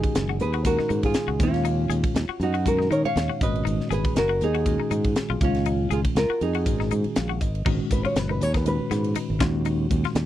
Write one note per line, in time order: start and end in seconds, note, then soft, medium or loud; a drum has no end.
0.00 0.45 A#2 medium
0.00 0.44 D#3 medium
0.00 0.45 G#3 medium
0.00 0.45 C#4 medium
0.00 0.37 D#4 medium
0.00 0.45 F#4 medium
0.00 0.40 G#4 medium
0.00 kick medium
0.00 ride medium
0.15 0.39 F#1 medium
0.15 snare medium
0.15 hi-hat pedal medium
0.15 ride medium
0.29 0.48 F#4 medium
0.40 0.76 D#2 medium
0.40 0.65 G#4 medium
0.40 0.66 B4 medium
0.40 hi-hat pedal medium
0.40 ride medium
0.53 0.73 F#4 medium
0.53 ride soft
0.65 1.38 A#2 medium
0.65 1.39 D#3 medium
0.65 1.39 G#3 medium
0.65 1.39 C#4 medium
0.65 1.41 D#4 medium
0.65 1.02 F#4 medium
0.65 1.04 A#4 medium
0.65 kick medium
0.65 hi-hat pedal medium
0.65 ride medium
0.79 0.87 D#4 medium
0.79 muted fingered electric bass stroke soft
0.79 snare soft
0.89 1.14 G#2 medium
0.89 1.09 D#4 medium
0.89 hi-hat pedal medium
0.89 ride medium
1.03 1.39 F4 medium
1.03 1.42 G#4 medium
1.03 kick medium
1.03 ride medium
1.14 muted fingered electric bass stroke soft
1.14 snare medium
1.14 hi-hat pedal medium
1.14 ride medium
1.28 1.39 C#2 medium
1.28 1.47 F#4 medium
1.39 1.86 D#2 medium
1.39 2.21 A#2 medium
1.39 2.21 D#3 medium
1.39 2.21 G#3 medium
1.39 2.21 C#4 medium
1.39 2.38 C#4 medium
1.39 2.21 F4 medium
1.39 2.42 F4 medium
1.39 kick medium
1.39 hi-hat pedal medium
1.39 ride medium
1.54 snare soft
1.54 ride medium
1.65 1.84 D#4 medium
1.65 hi-hat pedal medium
1.65 ride medium
1.89 2.03 D#2 medium
1.89 2.09 G#4 medium
1.89 hi-hat pedal medium
1.89 ride medium
2.03 kick medium
2.03 ride medium
2.15 2.28 D#2 medium
2.15 snare loud
2.15 hi-hat pedal medium
2.15 ride medium
2.29 2.48 F#4 medium
2.29 muted fingered electric bass stroke soft
2.40 2.86 F#2 medium
2.40 2.65 D#4 medium
2.40 2.68 F#4 medium
2.40 hi-hat pedal medium
2.40 ride medium
2.54 2.73 F#4 medium
2.54 ride medium
2.65 3.40 A#2 medium
2.65 3.40 D#3 medium
2.65 3.40 G#3 medium
2.65 3.41 C#4 medium
2.65 3.41 D#4 medium
2.65 2.90 F#4 medium
2.65 2.92 A#4 medium
2.65 kick medium
2.65 hi-hat pedal medium
2.65 ride medium
2.79 2.87 D#4 medium
2.79 snare soft
2.91 3.03 D#3 medium
2.91 3.10 D#4 medium
2.91 3.04 A#4 medium
2.91 3.04 C#5 medium
2.91 hi-hat pedal medium
2.91 ride medium
3.04 3.39 C#5 medium
3.04 3.42 F5 medium
3.04 muted fingered electric bass stroke soft
3.04 ride medium
3.16 3.28 D#2 medium
3.16 snare medium
3.16 hi-hat pedal medium
3.16 ride medium
3.29 3.48 F#4 medium
3.41 3.64 G#1 medium
3.41 4.22 A#2 medium
3.41 4.22 D#3 medium
3.41 4.22 G#3 medium
3.41 4.22 C#4 medium
3.41 4.22 F#4 medium
3.41 3.89 B4 medium
3.41 3.92 D#5 medium
3.41 kick medium
3.41 hi-hat pedal medium
3.41 ride medium
3.56 ride soft
3.65 3.78 G#1 medium
3.65 3.84 D#4 medium
3.65 hi-hat pedal medium
3.65 ride medium
3.80 snare soft
3.91 4.03 G#1 medium
3.91 4.09 G#4 medium
3.91 4.16 G#4 medium
3.91 4.15 B4 medium
3.91 hi-hat pedal medium
3.91 ride medium
4.05 kick medium
4.05 ride medium
4.16 4.39 F#1 medium
4.16 4.41 F#4 medium
4.16 4.43 A#4 medium
4.16 snare loud
4.16 hi-hat pedal medium
4.16 ride medium
4.29 4.48 F#4 medium
4.41 4.77 D#2 medium
4.41 5.38 D#4 medium
4.41 5.43 G#4 medium
4.41 hi-hat pedal medium
4.41 ride medium
4.55 4.73 F#4 medium
4.55 ride medium
4.66 5.41 A#2 medium
4.66 5.41 D#3 medium
4.66 5.41 G#3 medium
4.66 5.42 C#4 medium
4.66 5.42 F#4 medium
4.66 kick medium
4.66 hi-hat pedal medium
4.66 ride medium
4.80 4.88 D#4 medium
4.80 muted fingered electric bass stroke soft
4.91 5.14 G#2 medium
4.91 5.10 D#4 medium
4.91 hi-hat pedal medium
4.91 ride medium
5.04 kick medium
5.04 ride medium
5.16 muted fingered electric bass stroke soft
5.16 snare medium
5.16 hi-hat pedal medium
5.16 ride medium
5.30 5.40 B1 medium
5.30 5.49 F4 medium
5.41 5.87 C#2 medium
5.41 6.22 A#2 medium
5.41 6.22 D#3 medium
5.41 6.22 G#3 medium
5.41 6.22 C#4 medium
5.41 5.89 C#4 medium
5.41 6.22 F4 medium
5.41 5.89 F4 medium
5.41 kick medium
5.41 hi-hat pedal medium
5.41 ride medium
5.55 snare soft
5.55 ride medium
5.65 5.85 D#4 medium
5.65 hi-hat pedal medium
5.65 ride medium
5.91 6.04 C#2 medium
5.91 6.00 F4 medium
5.91 6.10 G#4 medium
5.91 5.99 G#4 medium
5.91 hi-hat pedal medium
5.91 ride medium
6.05 kick medium
6.05 ride medium
6.15 6.28 C#2 medium
6.15 6.40 F4 medium
6.15 6.40 A#4 medium
6.15 snare medium
6.15 hi-hat pedal medium
6.15 ride medium
6.30 6.49 F#4 medium
6.30 muted fingered electric bass stroke soft
6.41 6.64 F2 medium
6.41 7.38 D#4 medium
6.41 7.38 G#4 medium
6.41 hi-hat pedal medium
6.41 ride medium
6.54 6.74 F#4 medium
6.54 ride medium
6.66 6.89 G#1 medium
6.66 7.46 A#2 medium
6.66 7.46 D#3 medium
6.66 7.46 G#3 medium
6.66 7.46 C#4 medium
6.66 7.46 F#4 medium
6.66 kick medium
6.66 hi-hat pedal medium
6.66 ride medium
6.80 6.88 D#4 medium
6.80 snare soft
6.91 7.04 G#2 medium
6.91 7.10 D#4 medium
6.91 hi-hat pedal medium
6.91 ride medium
7.04 muted fingered electric bass stroke soft
7.04 ride soft
7.16 7.39 A#1 medium
7.16 7.40 F5 medium
7.16 snare medium
7.16 hi-hat pedal medium
7.16 ride medium
7.29 7.48 F#4 medium
7.41 7.64 G#1 medium
7.41 7.64 D#5 medium
7.41 kick medium
7.41 hi-hat pedal medium
7.41 ride medium
7.55 ride medium
7.66 7.79 G#1 medium
7.66 8.45 A#2 medium
7.66 8.45 D#3 medium
7.66 8.45 G#3 medium
7.66 8.45 C#4 medium
7.66 7.85 D#4 medium
7.66 8.46 F#4 medium
7.66 kick loud
7.66 crash medium
7.91 8.04 G#1 medium
7.91 8.05 B4 medium
7.91 kick medium
7.91 hi-hat pedal medium
7.91 ride medium
8.05 8.24 F4 medium
8.05 8.18 C#5 medium
8.05 ride medium
8.16 8.39 F#1 medium
8.16 8.29 B4 medium
8.16 snare loud
8.16 hi-hat pedal medium
8.16 ride medium
8.29 8.48 D#4 medium
8.29 8.43 B4 medium
8.41 8.77 D#2 medium
8.41 8.55 C#5 medium
8.41 snare soft
8.41 hi-hat pedal medium
8.41 ride medium
8.54 8.73 D#4 medium
8.54 8.66 B4 medium
8.54 kick medium
8.54 snare soft
8.54 ride medium
8.66 9.39 A#2 medium
8.66 9.39 D#3 medium
8.66 9.39 G#3 medium
8.66 9.39 C#4 medium
8.66 9.40 F#4 medium
8.66 9.40 B4 medium
8.66 hi-hat pedal medium
8.66 ride medium
8.80 muted fingered electric bass stroke soft
8.91 9.14 G#2 medium
8.91 9.10 B3 medium
8.91 snare soft
8.91 hi-hat pedal medium
8.91 ride medium
9.04 ride medium
9.15 9.35 D#4 medium
9.15 muted fingered electric bass stroke soft
9.15 hi-hat pedal medium
9.15 ride medium
9.30 9.40 G#1 medium
9.40 9.87 D#2 medium
9.40 10.21 A#2 medium
9.40 10.21 D#3 medium
9.40 10.21 G#3 medium
9.40 10.21 C#4 medium
9.40 9.60 F4 medium
9.40 10.22 F#4 medium
9.40 kick loud
9.40 snare loud
9.40 hi-hat pedal medium
9.40 ride medium
9.65 9.85 D#4 medium
9.65 hi-hat pedal medium
9.65 ride medium
9.91 10.04 D#2 medium
9.91 kick medium
9.91 hi-hat pedal medium
9.91 ride medium
10.05 10.24 F4 medium
10.05 snare soft
10.05 ride medium
10.15 10.26 D#2 medium
10.15 snare loud
10.15 hi-hat pedal medium
10.15 ride medium